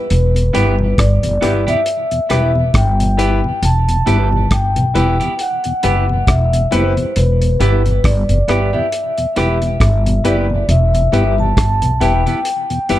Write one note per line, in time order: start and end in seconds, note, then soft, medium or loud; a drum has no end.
0.00 1.03 B4 medium
0.10 0.50 E1 loud
0.10 closed hi-hat medium
0.35 0.44 E2 medium
0.35 0.44 B2 medium
0.35 closed hi-hat medium
0.53 0.94 G1 loud
0.53 0.65 G3 medium
0.53 0.75 B3 loud
0.53 0.66 B3 medium
0.53 0.73 E4 loud
0.53 0.75 E4 medium
0.53 0.66 E4 medium
0.53 0.73 G4 medium
0.53 0.76 G4 loud
0.53 0.74 B4 loud
0.53 closed hi-hat medium
0.79 0.88 E2 medium
0.79 0.88 B2 medium
0.98 1.21 G1 loud
0.98 1.70 D5 loud
0.98 kick loud
0.98 cross-stick loud
0.98 closed hi-hat loud
1.23 1.40 F#1 medium
1.23 1.32 E2 medium
1.23 1.32 B2 medium
1.23 1.31 G4 soft
1.23 1.31 B4 soft
1.23 closed hi-hat medium
1.41 1.65 G1 medium
1.41 1.54 G3 medium
1.41 1.63 B3 medium
1.41 1.54 B3 medium
1.41 1.61 E4 medium
1.41 1.64 E4 medium
1.41 1.54 E4 medium
1.41 1.61 G4 medium
1.41 1.64 G4 medium
1.41 1.62 B4 loud
1.41 cross-stick medium
1.41 closed hi-hat medium
1.67 1.76 E2 medium
1.67 1.76 B2 medium
1.67 1.80 B3 medium
1.67 1.80 E4 medium
1.67 1.80 G4 medium
1.67 2.78 E5 loud
1.67 closed hi-hat soft
1.86 closed hi-hat medium
2.11 2.20 E2 medium
2.11 2.20 B2 medium
2.11 closed hi-hat soft
2.29 2.70 E1 medium
2.29 2.42 G3 medium
2.29 2.51 B3 medium
2.29 2.42 B3 medium
2.29 2.49 E4 medium
2.29 2.52 E4 medium
2.29 2.42 E4 medium
2.29 2.50 G4 medium
2.29 2.52 G4 medium
2.29 2.50 B4 loud
2.29 cross-stick medium
2.29 closed hi-hat medium
2.55 2.64 E2 medium
2.55 2.64 B2 medium
2.74 3.40 G1 loud
2.74 3.66 G5 loud
2.74 kick loud
2.74 cross-stick loud
2.74 closed hi-hat medium
3.00 3.09 E2 medium
3.00 3.09 B2 medium
3.00 closed hi-hat medium
3.17 3.30 G3 medium
3.17 3.40 B3 medium
3.17 3.31 B3 medium
3.17 3.37 E4 loud
3.17 3.40 E4 medium
3.17 3.31 E4 medium
3.17 3.38 G4 medium
3.17 3.40 G4 loud
3.17 3.38 B4 loud
3.17 closed hi-hat medium
3.44 3.53 E2 medium
3.44 3.53 B2 medium
3.62 4.03 E1 loud
3.62 4.55 A5 loud
3.62 closed hi-hat medium
3.89 3.97 E2 medium
3.89 3.97 B2 medium
3.89 closed hi-hat medium
4.06 4.47 G1 medium
4.06 4.18 G3 medium
4.06 4.28 B3 medium
4.06 4.19 B3 medium
4.06 4.26 E4 medium
4.06 4.28 E4 medium
4.06 4.19 E4 medium
4.06 4.26 G4 medium
4.06 4.29 G4 medium
4.06 4.26 B4 medium
4.06 closed hi-hat medium
4.33 4.41 E2 medium
4.33 4.41 B2 medium
4.51 4.74 G1 medium
4.51 5.43 G5 loud
4.51 kick loud
4.51 cross-stick loud
4.51 closed hi-hat loud
4.76 4.93 B1 medium
4.76 4.85 E2 medium
4.76 4.85 B2 medium
4.76 4.84 G4 soft
4.76 4.84 B4 soft
4.76 closed hi-hat medium
4.94 5.18 E1 medium
4.94 5.07 G3 medium
4.94 5.17 B3 medium
4.94 5.07 B3 medium
4.94 5.14 E4 medium
4.94 5.17 E4 loud
4.94 5.07 E4 medium
4.94 5.14 G4 medium
4.94 5.17 G4 loud
4.94 5.15 B4 loud
4.94 closed hi-hat medium
5.20 5.30 E2 medium
5.20 5.30 B2 medium
5.20 5.33 B3 medium
5.20 5.33 E4 medium
5.20 5.33 G4 medium
5.20 closed hi-hat soft
5.39 6.31 F#5 loud
5.39 closed hi-hat medium
5.64 5.74 E2 medium
5.64 5.74 B2 medium
5.64 closed hi-hat soft
5.83 6.24 F#1 medium
5.83 5.95 G3 medium
5.83 6.05 B3 medium
5.83 5.96 B3 medium
5.83 6.03 E4 medium
5.83 6.05 E4 medium
5.83 5.96 E4 medium
5.83 6.03 G4 medium
5.83 6.05 G4 loud
5.83 6.03 B4 loud
5.83 closed hi-hat medium
6.09 6.18 E2 medium
6.09 6.18 B2 medium
6.27 6.68 E1 medium
6.27 6.74 E5 medium
6.27 kick loud
6.27 cross-stick loud
6.27 closed hi-hat medium
6.53 6.62 E2 medium
6.53 6.62 B2 medium
6.53 closed hi-hat medium
6.71 6.95 F#1 loud
6.71 6.84 G3 medium
6.71 6.94 B3 medium
6.71 6.84 B3 medium
6.71 6.91 E4 loud
6.71 6.94 E4 medium
6.71 6.84 E4 medium
6.71 6.91 G4 medium
6.71 6.94 G4 medium
6.71 6.91 B4 loud
6.71 7.18 C5 medium
6.71 closed hi-hat medium
6.97 7.06 E2 medium
6.97 7.06 B2 medium
6.97 closed hi-hat soft
7.16 7.56 E1 loud
7.16 8.07 B4 medium
7.16 closed hi-hat medium
7.42 7.50 E2 medium
7.42 7.50 B2 medium
7.42 closed hi-hat medium
7.60 8.00 G1 loud
7.60 7.72 G3 medium
7.60 7.82 B3 medium
7.60 7.72 B3 medium
7.60 7.79 E4 medium
7.60 7.82 E4 loud
7.60 7.72 E4 medium
7.60 7.79 G4 medium
7.60 7.82 G4 loud
7.60 7.80 B4 loud
7.60 closed hi-hat medium
7.86 7.94 E2 medium
7.86 7.94 B2 medium
7.86 closed hi-hat soft
8.04 8.27 G1 loud
8.04 8.76 D5 medium
8.04 kick loud
8.04 cross-stick loud
8.04 closed hi-hat loud
8.29 8.46 F#1 medium
8.29 8.39 E2 medium
8.29 8.39 B2 medium
8.29 8.37 G4 soft
8.29 8.37 B4 soft
8.29 closed hi-hat medium
8.48 8.71 G1 medium
8.48 8.60 G3 medium
8.48 8.70 B3 medium
8.48 8.60 B3 medium
8.48 8.67 E4 medium
8.48 8.70 E4 medium
8.48 8.60 E4 medium
8.48 8.68 G4 medium
8.48 8.70 G4 loud
8.48 8.68 B4 loud
8.48 cross-stick medium
8.48 closed hi-hat medium
8.73 8.83 E2 medium
8.73 8.83 B2 medium
8.73 8.87 B3 medium
8.73 8.86 E4 medium
8.73 8.86 G4 medium
8.73 10.29 E5 medium
8.92 closed hi-hat medium
9.18 9.27 E2 medium
9.18 9.27 B2 medium
9.18 closed hi-hat soft
9.36 9.77 E1 medium
9.36 9.48 G3 medium
9.36 9.58 B3 medium
9.36 9.48 B3 medium
9.36 9.56 E4 medium
9.36 9.58 E4 medium
9.36 9.49 E4 medium
9.36 9.56 G4 medium
9.36 9.58 G4 loud
9.36 9.56 B4 loud
9.36 cross-stick medium
9.36 closed hi-hat medium
9.62 9.71 E2 medium
9.62 9.71 B2 medium
9.62 closed hi-hat soft
9.80 10.21 G1 loud
9.80 kick loud
9.80 cross-stick loud
9.80 closed hi-hat medium
10.06 10.15 E2 medium
10.06 10.15 B2 medium
10.06 closed hi-hat medium
10.24 10.65 F#1 medium
10.24 10.36 G3 medium
10.24 10.46 B3 medium
10.24 10.37 B3 medium
10.24 10.44 E4 medium
10.24 10.47 E4 medium
10.24 10.37 E4 medium
10.24 10.44 G4 medium
10.24 10.47 G4 loud
10.24 10.44 B4 loud
10.24 10.66 D5 medium
10.24 closed hi-hat medium
10.50 10.59 E2 medium
10.50 10.59 B2 medium
10.69 11.09 E1 loud
10.69 11.34 E5 medium
10.69 closed hi-hat medium
10.94 11.03 E2 medium
10.94 11.03 B2 medium
10.94 closed hi-hat medium
11.12 11.53 G1 loud
11.12 11.24 G3 medium
11.12 11.34 B3 medium
11.12 11.25 B3 medium
11.12 11.32 E4 loud
11.12 11.25 E4 medium
11.12 11.35 E4 medium
11.12 11.32 G4 medium
11.12 11.35 G4 medium
11.12 11.32 B4 loud
11.12 closed hi-hat medium
11.38 11.47 E2 medium
11.38 11.47 B2 medium
11.38 12.04 A5 medium
11.57 11.80 G1 medium
11.57 kick loud
11.57 cross-stick loud
11.57 closed hi-hat loud
11.82 11.99 B1 medium
11.82 11.91 E2 medium
11.82 11.91 B2 medium
11.82 11.90 G4 soft
11.82 11.90 B4 soft
11.82 closed hi-hat medium
12.00 12.24 E1 medium
12.00 12.13 G3 medium
12.00 12.22 B3 medium
12.00 12.13 B3 medium
12.00 12.20 E4 medium
12.00 12.23 E4 medium
12.00 12.13 E4 medium
12.00 12.20 G4 medium
12.00 12.23 G4 medium
12.00 12.21 B4 medium
12.00 12.99 G5 medium
12.00 closed hi-hat medium
12.26 12.35 E2 medium
12.26 12.35 B2 medium
12.26 12.39 B3 medium
12.26 12.39 E4 medium
12.26 12.39 G4 medium
12.26 closed hi-hat soft
12.45 closed hi-hat medium
12.70 12.79 E2 medium
12.70 12.79 B2 medium
12.70 closed hi-hat soft
12.89 12.99 F#1 medium
12.89 12.99 G3 medium
12.89 12.99 B3 medium
12.89 12.99 E4 medium
12.89 12.99 G4 medium
12.89 12.99 G4 loud
12.89 12.99 B4 loud
12.89 closed hi-hat medium